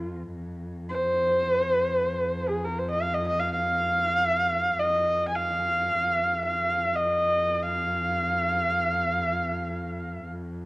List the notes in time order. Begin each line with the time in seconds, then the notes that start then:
Already playing: F2 F4
0.34 F2
0.89 C5
2.49 G#4
2.65 A#4
2.79 C5
2.91 D#5
3.02 F5
3.14 D#5
3.28 D#5
3.40 F5
3.53 F5
4.79 D#5
5.28 G#5
5.36 F5
6.00 F2
6.46 F5
6.96 D#5
7.63 F5